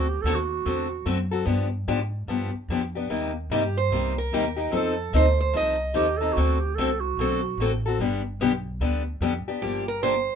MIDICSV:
0, 0, Header, 1, 6, 480
1, 0, Start_track
1, 0, Tempo, 407609
1, 1724, Time_signature, 4, 2, 24, 8
1, 12192, End_track
2, 0, Start_track
2, 0, Title_t, "Steel-string acoustic guitar"
2, 0, Program_c, 0, 25
2, 4144, Note_on_c, 0, 67, 78
2, 4440, Note_off_c, 0, 67, 0
2, 4445, Note_on_c, 0, 72, 88
2, 4921, Note_off_c, 0, 72, 0
2, 4926, Note_on_c, 0, 70, 84
2, 5596, Note_off_c, 0, 70, 0
2, 5612, Note_on_c, 0, 69, 83
2, 6037, Note_off_c, 0, 69, 0
2, 6080, Note_on_c, 0, 72, 97
2, 6340, Note_off_c, 0, 72, 0
2, 6365, Note_on_c, 0, 72, 91
2, 6524, Note_off_c, 0, 72, 0
2, 6555, Note_on_c, 0, 75, 98
2, 7270, Note_off_c, 0, 75, 0
2, 11328, Note_on_c, 0, 67, 87
2, 11630, Note_off_c, 0, 67, 0
2, 11637, Note_on_c, 0, 70, 93
2, 11805, Note_off_c, 0, 70, 0
2, 11810, Note_on_c, 0, 72, 106
2, 12192, Note_off_c, 0, 72, 0
2, 12192, End_track
3, 0, Start_track
3, 0, Title_t, "Clarinet"
3, 0, Program_c, 1, 71
3, 0, Note_on_c, 1, 66, 85
3, 100, Note_on_c, 1, 67, 90
3, 118, Note_off_c, 1, 66, 0
3, 257, Note_on_c, 1, 69, 100
3, 275, Note_off_c, 1, 67, 0
3, 409, Note_on_c, 1, 66, 96
3, 427, Note_off_c, 1, 69, 0
3, 1381, Note_off_c, 1, 66, 0
3, 7013, Note_on_c, 1, 67, 101
3, 7273, Note_on_c, 1, 69, 104
3, 7291, Note_off_c, 1, 67, 0
3, 7454, Note_on_c, 1, 66, 85
3, 7472, Note_off_c, 1, 69, 0
3, 7770, Note_on_c, 1, 67, 92
3, 7788, Note_off_c, 1, 66, 0
3, 7952, Note_on_c, 1, 69, 97
3, 7969, Note_off_c, 1, 67, 0
3, 8248, Note_on_c, 1, 66, 81
3, 8266, Note_off_c, 1, 69, 0
3, 9214, Note_off_c, 1, 66, 0
3, 12192, End_track
4, 0, Start_track
4, 0, Title_t, "Steel-string acoustic guitar"
4, 0, Program_c, 2, 25
4, 300, Note_on_c, 2, 50, 96
4, 307, Note_on_c, 2, 57, 92
4, 315, Note_on_c, 2, 60, 94
4, 316, Note_on_c, 2, 66, 108
4, 322, Note_on_c, 2, 69, 101
4, 422, Note_off_c, 2, 50, 0
4, 426, Note_off_c, 2, 57, 0
4, 430, Note_off_c, 2, 60, 0
4, 430, Note_off_c, 2, 66, 0
4, 433, Note_off_c, 2, 69, 0
4, 772, Note_on_c, 2, 50, 64
4, 772, Note_on_c, 2, 57, 71
4, 782, Note_on_c, 2, 60, 70
4, 787, Note_on_c, 2, 66, 70
4, 790, Note_on_c, 2, 69, 78
4, 1015, Note_off_c, 2, 50, 0
4, 1015, Note_off_c, 2, 57, 0
4, 1020, Note_off_c, 2, 60, 0
4, 1023, Note_off_c, 2, 66, 0
4, 1024, Note_off_c, 2, 69, 0
4, 1243, Note_on_c, 2, 50, 77
4, 1248, Note_on_c, 2, 60, 87
4, 1253, Note_on_c, 2, 57, 82
4, 1254, Note_on_c, 2, 66, 100
4, 1257, Note_on_c, 2, 69, 90
4, 1374, Note_off_c, 2, 50, 0
4, 1377, Note_off_c, 2, 60, 0
4, 1379, Note_off_c, 2, 57, 0
4, 1380, Note_off_c, 2, 66, 0
4, 1381, Note_off_c, 2, 69, 0
4, 1546, Note_on_c, 2, 69, 61
4, 1562, Note_on_c, 2, 66, 54
4, 1564, Note_on_c, 2, 60, 47
4, 1705, Note_off_c, 2, 60, 0
4, 1710, Note_on_c, 2, 50, 66
4, 1710, Note_on_c, 2, 59, 63
4, 1713, Note_on_c, 2, 53, 59
4, 1718, Note_off_c, 2, 66, 0
4, 1719, Note_off_c, 2, 69, 0
4, 1723, Note_on_c, 2, 62, 65
4, 1728, Note_on_c, 2, 67, 77
4, 1965, Note_off_c, 2, 50, 0
4, 1965, Note_off_c, 2, 59, 0
4, 1966, Note_off_c, 2, 53, 0
4, 1971, Note_off_c, 2, 62, 0
4, 1974, Note_off_c, 2, 67, 0
4, 2212, Note_on_c, 2, 53, 102
4, 2214, Note_on_c, 2, 50, 86
4, 2218, Note_on_c, 2, 62, 104
4, 2219, Note_on_c, 2, 67, 95
4, 2222, Note_on_c, 2, 59, 98
4, 2340, Note_off_c, 2, 50, 0
4, 2340, Note_off_c, 2, 53, 0
4, 2342, Note_off_c, 2, 62, 0
4, 2343, Note_off_c, 2, 67, 0
4, 2344, Note_off_c, 2, 59, 0
4, 2686, Note_on_c, 2, 50, 74
4, 2698, Note_on_c, 2, 53, 76
4, 2698, Note_on_c, 2, 59, 66
4, 2702, Note_on_c, 2, 62, 67
4, 2709, Note_on_c, 2, 67, 74
4, 2933, Note_off_c, 2, 50, 0
4, 2939, Note_off_c, 2, 53, 0
4, 2939, Note_off_c, 2, 59, 0
4, 2941, Note_off_c, 2, 62, 0
4, 2945, Note_off_c, 2, 67, 0
4, 3180, Note_on_c, 2, 50, 77
4, 3183, Note_on_c, 2, 53, 76
4, 3192, Note_on_c, 2, 62, 84
4, 3193, Note_on_c, 2, 59, 84
4, 3203, Note_on_c, 2, 67, 94
4, 3304, Note_off_c, 2, 50, 0
4, 3305, Note_off_c, 2, 53, 0
4, 3310, Note_off_c, 2, 59, 0
4, 3310, Note_off_c, 2, 62, 0
4, 3315, Note_off_c, 2, 67, 0
4, 3477, Note_on_c, 2, 67, 57
4, 3488, Note_on_c, 2, 62, 48
4, 3496, Note_on_c, 2, 59, 50
4, 3645, Note_off_c, 2, 67, 0
4, 3649, Note_on_c, 2, 55, 71
4, 3650, Note_off_c, 2, 62, 0
4, 3652, Note_on_c, 2, 48, 72
4, 3654, Note_off_c, 2, 59, 0
4, 3655, Note_on_c, 2, 63, 68
4, 3657, Note_on_c, 2, 67, 72
4, 3659, Note_on_c, 2, 58, 63
4, 3895, Note_off_c, 2, 55, 0
4, 3896, Note_off_c, 2, 48, 0
4, 3898, Note_off_c, 2, 63, 0
4, 3899, Note_off_c, 2, 67, 0
4, 3900, Note_off_c, 2, 58, 0
4, 4139, Note_on_c, 2, 48, 98
4, 4139, Note_on_c, 2, 58, 90
4, 4140, Note_on_c, 2, 55, 105
4, 4141, Note_on_c, 2, 63, 101
4, 4147, Note_on_c, 2, 67, 94
4, 4263, Note_off_c, 2, 48, 0
4, 4263, Note_off_c, 2, 55, 0
4, 4263, Note_off_c, 2, 58, 0
4, 4264, Note_off_c, 2, 63, 0
4, 4267, Note_off_c, 2, 67, 0
4, 4616, Note_on_c, 2, 48, 69
4, 4619, Note_on_c, 2, 55, 65
4, 4627, Note_on_c, 2, 63, 69
4, 4629, Note_on_c, 2, 58, 70
4, 4635, Note_on_c, 2, 67, 79
4, 4858, Note_off_c, 2, 48, 0
4, 4860, Note_off_c, 2, 55, 0
4, 4864, Note_off_c, 2, 63, 0
4, 4865, Note_off_c, 2, 58, 0
4, 4868, Note_off_c, 2, 67, 0
4, 5096, Note_on_c, 2, 48, 83
4, 5103, Note_on_c, 2, 55, 78
4, 5107, Note_on_c, 2, 63, 96
4, 5109, Note_on_c, 2, 58, 92
4, 5112, Note_on_c, 2, 67, 94
4, 5222, Note_off_c, 2, 48, 0
4, 5225, Note_off_c, 2, 55, 0
4, 5227, Note_off_c, 2, 63, 0
4, 5228, Note_off_c, 2, 58, 0
4, 5230, Note_off_c, 2, 67, 0
4, 5375, Note_on_c, 2, 67, 65
4, 5385, Note_on_c, 2, 63, 56
4, 5390, Note_on_c, 2, 58, 51
4, 5547, Note_on_c, 2, 53, 60
4, 5549, Note_off_c, 2, 58, 0
4, 5550, Note_off_c, 2, 63, 0
4, 5554, Note_off_c, 2, 67, 0
4, 5554, Note_on_c, 2, 60, 68
4, 5564, Note_on_c, 2, 63, 66
4, 5571, Note_on_c, 2, 69, 66
4, 5804, Note_off_c, 2, 53, 0
4, 5807, Note_off_c, 2, 60, 0
4, 5812, Note_off_c, 2, 63, 0
4, 5816, Note_off_c, 2, 69, 0
4, 6042, Note_on_c, 2, 53, 84
4, 6047, Note_on_c, 2, 60, 94
4, 6057, Note_on_c, 2, 69, 105
4, 6058, Note_on_c, 2, 63, 98
4, 6175, Note_off_c, 2, 53, 0
4, 6177, Note_off_c, 2, 60, 0
4, 6182, Note_off_c, 2, 69, 0
4, 6183, Note_off_c, 2, 63, 0
4, 6517, Note_on_c, 2, 53, 69
4, 6522, Note_on_c, 2, 60, 68
4, 6529, Note_on_c, 2, 63, 77
4, 6536, Note_on_c, 2, 69, 82
4, 6768, Note_off_c, 2, 53, 0
4, 6771, Note_off_c, 2, 60, 0
4, 6775, Note_off_c, 2, 63, 0
4, 6778, Note_off_c, 2, 69, 0
4, 6995, Note_on_c, 2, 60, 92
4, 6999, Note_on_c, 2, 53, 87
4, 7001, Note_on_c, 2, 63, 92
4, 7014, Note_on_c, 2, 69, 97
4, 7131, Note_off_c, 2, 60, 0
4, 7133, Note_off_c, 2, 53, 0
4, 7134, Note_off_c, 2, 63, 0
4, 7140, Note_off_c, 2, 69, 0
4, 7308, Note_on_c, 2, 69, 63
4, 7315, Note_on_c, 2, 63, 53
4, 7323, Note_on_c, 2, 60, 47
4, 7480, Note_off_c, 2, 69, 0
4, 7484, Note_off_c, 2, 63, 0
4, 7487, Note_off_c, 2, 60, 0
4, 7490, Note_on_c, 2, 50, 69
4, 7495, Note_on_c, 2, 57, 75
4, 7502, Note_on_c, 2, 60, 67
4, 7507, Note_on_c, 2, 69, 67
4, 7509, Note_on_c, 2, 66, 60
4, 7735, Note_off_c, 2, 50, 0
4, 7737, Note_off_c, 2, 57, 0
4, 7741, Note_off_c, 2, 60, 0
4, 7743, Note_off_c, 2, 69, 0
4, 7744, Note_off_c, 2, 66, 0
4, 7986, Note_on_c, 2, 50, 83
4, 7988, Note_on_c, 2, 57, 96
4, 7998, Note_on_c, 2, 66, 93
4, 8002, Note_on_c, 2, 60, 102
4, 8004, Note_on_c, 2, 69, 104
4, 8106, Note_off_c, 2, 50, 0
4, 8107, Note_off_c, 2, 57, 0
4, 8112, Note_off_c, 2, 66, 0
4, 8114, Note_off_c, 2, 60, 0
4, 8115, Note_off_c, 2, 69, 0
4, 8467, Note_on_c, 2, 50, 72
4, 8475, Note_on_c, 2, 57, 64
4, 8486, Note_on_c, 2, 60, 77
4, 8489, Note_on_c, 2, 66, 80
4, 8490, Note_on_c, 2, 69, 75
4, 8702, Note_off_c, 2, 50, 0
4, 8706, Note_off_c, 2, 57, 0
4, 8712, Note_off_c, 2, 60, 0
4, 8714, Note_off_c, 2, 66, 0
4, 8714, Note_off_c, 2, 69, 0
4, 8950, Note_on_c, 2, 50, 73
4, 8963, Note_on_c, 2, 60, 94
4, 8967, Note_on_c, 2, 57, 73
4, 8968, Note_on_c, 2, 66, 86
4, 8972, Note_on_c, 2, 69, 83
4, 9067, Note_off_c, 2, 50, 0
4, 9074, Note_off_c, 2, 60, 0
4, 9076, Note_off_c, 2, 57, 0
4, 9076, Note_off_c, 2, 66, 0
4, 9078, Note_off_c, 2, 69, 0
4, 9252, Note_on_c, 2, 69, 60
4, 9273, Note_on_c, 2, 66, 54
4, 9285, Note_on_c, 2, 60, 50
4, 9411, Note_off_c, 2, 69, 0
4, 9421, Note_on_c, 2, 50, 59
4, 9422, Note_off_c, 2, 66, 0
4, 9425, Note_off_c, 2, 60, 0
4, 9427, Note_on_c, 2, 55, 63
4, 9430, Note_on_c, 2, 59, 64
4, 9433, Note_on_c, 2, 67, 68
4, 9441, Note_on_c, 2, 62, 69
4, 9659, Note_off_c, 2, 50, 0
4, 9662, Note_off_c, 2, 55, 0
4, 9663, Note_off_c, 2, 59, 0
4, 9665, Note_off_c, 2, 67, 0
4, 9669, Note_off_c, 2, 62, 0
4, 9902, Note_on_c, 2, 59, 98
4, 9903, Note_on_c, 2, 55, 91
4, 9905, Note_on_c, 2, 50, 86
4, 9912, Note_on_c, 2, 62, 96
4, 9920, Note_on_c, 2, 67, 107
4, 10023, Note_off_c, 2, 55, 0
4, 10023, Note_off_c, 2, 59, 0
4, 10024, Note_off_c, 2, 50, 0
4, 10028, Note_off_c, 2, 62, 0
4, 10032, Note_off_c, 2, 67, 0
4, 10373, Note_on_c, 2, 55, 62
4, 10375, Note_on_c, 2, 50, 63
4, 10381, Note_on_c, 2, 62, 81
4, 10383, Note_on_c, 2, 59, 73
4, 10392, Note_on_c, 2, 67, 69
4, 10614, Note_off_c, 2, 55, 0
4, 10615, Note_off_c, 2, 50, 0
4, 10619, Note_off_c, 2, 62, 0
4, 10620, Note_off_c, 2, 59, 0
4, 10624, Note_off_c, 2, 67, 0
4, 10852, Note_on_c, 2, 55, 80
4, 10855, Note_on_c, 2, 50, 77
4, 10856, Note_on_c, 2, 59, 92
4, 10861, Note_on_c, 2, 62, 81
4, 10870, Note_on_c, 2, 67, 90
4, 10978, Note_off_c, 2, 55, 0
4, 10979, Note_off_c, 2, 50, 0
4, 10979, Note_off_c, 2, 59, 0
4, 10982, Note_off_c, 2, 62, 0
4, 10986, Note_off_c, 2, 67, 0
4, 11162, Note_on_c, 2, 67, 57
4, 11167, Note_on_c, 2, 62, 52
4, 11179, Note_on_c, 2, 59, 49
4, 11325, Note_off_c, 2, 67, 0
4, 11328, Note_off_c, 2, 62, 0
4, 11328, Note_on_c, 2, 50, 57
4, 11330, Note_on_c, 2, 53, 55
4, 11334, Note_off_c, 2, 59, 0
4, 11344, Note_on_c, 2, 62, 62
4, 11345, Note_on_c, 2, 58, 66
4, 11348, Note_on_c, 2, 67, 62
4, 11572, Note_off_c, 2, 50, 0
4, 11573, Note_off_c, 2, 53, 0
4, 11580, Note_off_c, 2, 58, 0
4, 11580, Note_off_c, 2, 62, 0
4, 11582, Note_off_c, 2, 67, 0
4, 11806, Note_on_c, 2, 58, 88
4, 11808, Note_on_c, 2, 50, 89
4, 11809, Note_on_c, 2, 62, 89
4, 11812, Note_on_c, 2, 53, 88
4, 11818, Note_on_c, 2, 67, 96
4, 11934, Note_off_c, 2, 58, 0
4, 11935, Note_off_c, 2, 50, 0
4, 11936, Note_off_c, 2, 62, 0
4, 11937, Note_off_c, 2, 53, 0
4, 11940, Note_off_c, 2, 67, 0
4, 12192, End_track
5, 0, Start_track
5, 0, Title_t, "Upright bass"
5, 0, Program_c, 3, 32
5, 0, Note_on_c, 3, 38, 89
5, 268, Note_off_c, 3, 38, 0
5, 281, Note_on_c, 3, 39, 91
5, 747, Note_off_c, 3, 39, 0
5, 773, Note_on_c, 3, 40, 77
5, 1234, Note_off_c, 3, 40, 0
5, 1243, Note_on_c, 3, 42, 82
5, 1709, Note_off_c, 3, 42, 0
5, 1723, Note_on_c, 3, 43, 82
5, 2190, Note_off_c, 3, 43, 0
5, 2209, Note_on_c, 3, 44, 88
5, 2673, Note_off_c, 3, 44, 0
5, 2678, Note_on_c, 3, 43, 72
5, 2958, Note_off_c, 3, 43, 0
5, 3160, Note_on_c, 3, 41, 87
5, 3628, Note_off_c, 3, 41, 0
5, 3647, Note_on_c, 3, 39, 81
5, 4112, Note_off_c, 3, 39, 0
5, 4119, Note_on_c, 3, 43, 89
5, 4582, Note_off_c, 3, 43, 0
5, 4589, Note_on_c, 3, 36, 76
5, 5063, Note_off_c, 3, 36, 0
5, 5087, Note_on_c, 3, 39, 82
5, 5552, Note_off_c, 3, 39, 0
5, 5564, Note_on_c, 3, 41, 91
5, 6030, Note_off_c, 3, 41, 0
5, 6051, Note_on_c, 3, 38, 94
5, 6513, Note_off_c, 3, 38, 0
5, 6530, Note_on_c, 3, 36, 77
5, 6993, Note_off_c, 3, 36, 0
5, 7014, Note_on_c, 3, 39, 87
5, 7475, Note_off_c, 3, 39, 0
5, 7499, Note_on_c, 3, 38, 92
5, 7957, Note_off_c, 3, 38, 0
5, 7985, Note_on_c, 3, 36, 87
5, 8437, Note_off_c, 3, 36, 0
5, 8444, Note_on_c, 3, 35, 77
5, 8909, Note_off_c, 3, 35, 0
5, 8919, Note_on_c, 3, 33, 96
5, 9386, Note_off_c, 3, 33, 0
5, 9407, Note_on_c, 3, 31, 80
5, 9870, Note_off_c, 3, 31, 0
5, 9890, Note_on_c, 3, 35, 83
5, 10351, Note_off_c, 3, 35, 0
5, 10361, Note_on_c, 3, 38, 71
5, 10827, Note_off_c, 3, 38, 0
5, 10840, Note_on_c, 3, 41, 86
5, 11117, Note_off_c, 3, 41, 0
5, 11327, Note_on_c, 3, 31, 75
5, 12092, Note_off_c, 3, 31, 0
5, 12192, End_track
6, 0, Start_track
6, 0, Title_t, "Muted upright bass strokes"
6, 2987, Note_on_c, 9, 29, 39
6, 3104, Note_off_c, 9, 29, 0
6, 12192, End_track
0, 0, End_of_file